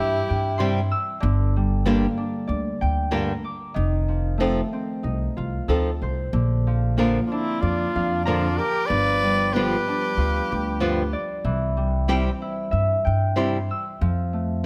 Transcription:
0.00 0.18 G2 medium
0.00 1.27 E3 medium
0.00 1.27 G3 medium
0.00 2.31 C4 medium
0.00 0.92 E4 medium
0.00 2.26 E4 medium
0.00 0.92 G4 medium
0.00 0.22 A4 medium
0.00 0.35 C5 medium
0.00 1.66 E5 medium
0.29 0.90 G2 medium
0.29 1.84 G5 medium
0.58 0.79 C3 medium
0.58 0.79 G3 loud
0.58 0.79 C4 medium
0.58 0.79 E4 medium
0.58 0.79 G4 medium
0.58 1.88 C6 loud
0.91 2.05 E6 medium
1.20 2.05 G1 loud
1.20 3.80 D3 loud
1.56 3.80 G3 medium
1.86 2.05 G2 medium
1.86 2.05 D3 medium
1.86 2.06 G3 medium
1.86 4.44 A#3 medium
1.86 2.06 A#3 medium
1.86 2.06 D4 medium
1.86 2.06 G4 loud
2.17 3.80 D4 medium
2.47 2.70 D2 medium
2.47 3.80 D5 medium
2.81 3.43 D2 medium
2.81 4.36 G5 medium
3.11 3.32 G2 medium
3.11 3.31 D3 medium
3.11 3.32 G3 medium
3.11 3.32 A#3 medium
3.11 3.32 D4 medium
3.11 3.32 G4 medium
3.11 4.44 A#5 medium
3.44 3.80 D6 medium
3.74 4.59 F1 medium
3.74 6.38 D#3 medium
4.08 6.38 F3 medium
4.38 4.60 F3 medium
4.38 7.03 A3 medium
4.38 4.60 C4 loud
4.38 4.60 D#4 medium
4.38 4.61 A4 medium
4.73 7.73 C4 medium
5.03 5.26 C2 medium
5.03 6.39 D#4 medium
5.37 5.58 C2 medium
5.37 7.89 F4 medium
5.68 5.99 D2 medium
5.68 5.89 F3 medium
5.68 5.89 C4 medium
5.68 5.90 D#4 medium
5.68 7.03 A4 medium
5.68 5.90 A4 medium
6.02 6.30 C2 medium
6.02 8.00 C5 medium
6.33 7.17 A#1 loud
6.33 8.96 D3 medium
6.67 8.89 F3 medium
6.97 7.18 A#2 medium
6.97 7.18 D3 medium
6.97 7.19 F3 medium
6.97 9.59 A#3 medium
6.97 7.19 A#3 medium
6.97 7.19 D4 loud
6.97 7.19 A#4 loud
7.27 7.35 D4 soft
7.27 7.34 F4 soft
7.32 7.62 C4 medium
7.32 9.87 D4 medium
7.32 7.63 E4 medium
7.61 7.84 F2 medium
7.61 8.24 D4 medium
7.61 8.24 F4 medium
7.61 9.47 D5 medium
7.96 8.57 F2 medium
7.96 9.62 F5 medium
8.25 8.47 A#2 medium
8.25 8.47 D3 medium
8.25 8.47 F3 medium
8.25 8.47 A#3 medium
8.25 8.59 D4 medium
8.25 8.47 D4 medium
8.25 8.59 F4 medium
8.25 8.47 A#4 medium
8.25 9.59 A#5 loud
8.58 8.89 G4 medium
8.58 8.88 A#4 loud
8.58 9.80 D6 medium
8.86 9.73 G1 loud
8.86 11.51 F3 medium
8.86 9.55 B4 medium
8.86 9.55 D5 medium
9.23 11.51 G3 medium
9.53 9.75 G2 medium
9.53 9.75 D3 medium
9.53 9.75 F3 medium
9.53 12.14 B3 medium
9.53 9.75 B3 medium
9.53 9.75 F4 medium
9.53 11.15 G4 medium
9.53 9.75 G4 medium
9.53 11.15 B4 medium
9.88 12.68 D4 medium
10.17 10.39 D2 medium
10.17 11.51 F4 medium
10.51 11.13 D2 medium
10.51 12.86 G4 medium
10.80 11.01 G2 medium
10.80 11.01 D3 medium
10.80 11.01 F3 medium
10.80 11.02 B3 medium
10.80 11.02 F4 medium
10.80 11.02 G4 medium
10.80 12.14 B4 medium
11.13 12.98 D5 medium
11.45 12.27 C2 medium
11.45 14.06 E3 medium
11.77 14.06 G3 medium
12.08 12.29 C3 loud
12.08 12.29 G3 medium
12.08 14.63 C4 medium
12.08 12.29 C4 loud
12.08 12.29 E4 loud
12.08 12.29 G4 medium
12.42 14.07 E4 medium
12.71 12.95 G2 medium
12.71 14.07 E5 medium
13.05 13.68 G2 medium
13.05 14.60 G5 medium
13.36 13.57 C3 medium
13.36 13.57 G3 medium
13.36 13.56 C4 medium
13.36 13.57 E4 medium
13.36 13.57 G4 medium
13.36 14.66 C6 medium
13.71 14.07 E6 medium
14.01 14.66 F2 medium
14.01 14.66 F3 medium
14.33 14.66 A3 medium

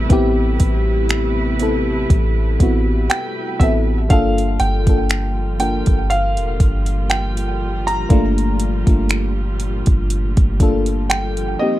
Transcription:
0.00 4.06 C3 medium
0.00 4.06 G3 medium
0.00 4.06 A3 medium
0.00 0.09 B3 medium
0.00 0.11 C4 medium
0.00 0.12 E4 medium
0.00 4.06 E4 medium
0.00 1.63 A4 medium
0.00 4.06 B4 medium
0.09 0.58 A1 loud
0.09 1.14 B3 loud
0.09 1.15 C4 medium
0.09 1.15 E4 loud
0.09 1.16 G4 loud
0.09 kick loud
0.09 closed hi-hat medium
0.60 2.06 A1 loud
0.60 kick medium
0.60 closed hi-hat medium
1.09 finger snap loud
1.09 closed hi-hat medium
1.59 2.31 B3 medium
1.59 2.31 C4 medium
1.59 2.32 E4 medium
1.59 2.32 A4 medium
1.59 closed hi-hat medium
2.10 2.58 A1 loud
2.10 kick loud
2.10 closed hi-hat medium
2.60 3.08 A1 loud
2.60 3.31 B3 medium
2.60 3.31 C4 medium
2.60 3.32 E4 medium
2.60 3.32 F#4 medium
2.60 kick medium
2.60 closed hi-hat medium
3.10 3.61 G5 medium
3.10 finger snap loud
3.10 closed hi-hat medium
3.60 4.08 A1 loud
3.60 3.96 B3 medium
3.60 3.96 C4 medium
3.60 3.97 E4 medium
3.60 3.97 A4 medium
3.60 3.71 E5 medium
3.60 kick loud
3.60 closed hi-hat medium
4.09 4.58 G1 loud
4.09 11.79 A#2 medium
4.09 11.79 F3 medium
4.09 11.79 G3 medium
4.09 4.62 A#3 medium
4.09 4.62 D4 medium
4.09 11.56 F4 medium
4.09 4.63 F4 medium
4.09 4.63 A4 loud
4.09 4.62 F5 medium
4.09 kick loud
4.09 closed hi-hat medium
4.38 closed hi-hat medium
4.60 4.86 G1 loud
4.60 5.56 G5 medium
4.60 closed hi-hat medium
4.86 5.83 G1 loud
4.86 5.39 A#3 medium
4.86 5.39 D4 medium
4.86 5.40 F4 medium
4.86 5.40 A4 medium
4.86 kick medium
4.86 closed hi-hat soft
5.09 finger snap loud
5.09 closed hi-hat medium
5.59 6.99 A#3 medium
5.59 7.00 D4 medium
5.59 7.00 F4 medium
5.59 7.01 A#4 medium
5.59 6.12 G5 medium
5.59 closed hi-hat medium
5.86 6.39 G1 loud
5.86 kick medium
5.86 closed hi-hat medium
6.10 7.13 F5 medium
6.10 closed hi-hat medium
6.37 6.59 F1 loud
6.37 closed hi-hat soft
6.60 8.06 G1 loud
6.60 kick medium
6.60 closed hi-hat medium
6.86 closed hi-hat soft
7.10 7.89 G5 medium
7.10 finger snap loud
7.10 closed hi-hat medium
7.37 closed hi-hat medium
7.87 10.83 A#5 loud
7.87 closed hi-hat medium
8.09 8.84 G1 loud
8.09 8.63 A3 loud
8.09 8.62 A#3 loud
8.09 8.63 D4 medium
8.09 8.63 F4 medium
8.09 kick loud
8.09 closed hi-hat medium
8.38 closed hi-hat medium
8.60 closed hi-hat medium
8.86 9.83 G1 loud
8.86 10.08 A3 medium
8.86 10.06 A#3 medium
8.86 10.07 D4 medium
8.86 10.08 F4 medium
8.86 kick medium
8.86 closed hi-hat soft
9.09 finger snap loud
9.09 closed hi-hat medium
9.60 closed hi-hat medium
9.86 10.35 G1 medium
9.86 kick medium
9.86 closed hi-hat medium
10.10 closed hi-hat medium
10.37 11.56 G1 medium
10.37 kick medium
10.37 closed hi-hat soft
10.60 11.58 A#3 medium
10.60 11.60 D4 medium
10.60 11.61 F4 medium
10.60 11.61 A4 medium
10.60 kick medium
10.60 closed hi-hat medium
10.86 closed hi-hat soft
11.10 11.61 G5 medium
11.10 finger snap loud
11.10 closed hi-hat medium
11.37 closed hi-hat medium
11.59 11.79 D#3 medium
11.59 11.79 A#3 medium
11.59 11.79 C4 medium
11.59 11.79 D#4 medium
11.59 11.79 G4 medium
11.59 11.79 D#5 medium

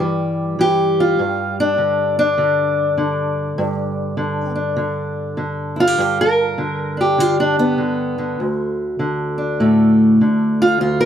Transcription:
0.00 1.16 G2 medium
0.00 0.58 E3 medium
0.00 3.59 G3 soft
0.00 0.60 G4 soft
0.59 1.16 E3 medium
0.59 1.20 G4 loud
1.00 1.58 F4 medium
1.19 3.58 G2 medium
1.60 2.18 D4 medium
1.78 2.37 D3 medium
2.19 4.54 D4 loud
2.38 2.96 D3 medium
2.98 4.16 D3 medium
3.58 5.95 G2 medium
4.17 4.75 D3 medium
4.55 5.79 D4 soft
4.76 5.36 D3 medium
5.37 6.57 D3 medium
5.76 5.87 E4 medium
5.80 6.59 F4 loud
5.87 5.98 G4 soft
5.98 8.36 G2 medium
5.98 6.19 G4 medium
6.21 7.00 A#4 loud
6.58 7.17 D3 medium
6.97 7.20 D4 soft
6.97 7.80 G4 medium
7.18 7.76 D3 medium
7.18 7.39 F4 medium
7.40 7.59 D4 medium
7.59 8.39 B3 loud
7.78 8.16 D3 medium
8.18 8.99 D3 soft
8.40 10.79 D2 medium
8.99 10.20 D3 medium
9.38 10.60 D4 soft
9.60 10.20 A2 medium
9.60 10.78 A3 soft
10.21 11.05 D3 medium
10.62 10.80 F4 loud
10.80 11.05 D2 medium
10.80 11.00 F4 medium
11.01 11.05 A#4 loud

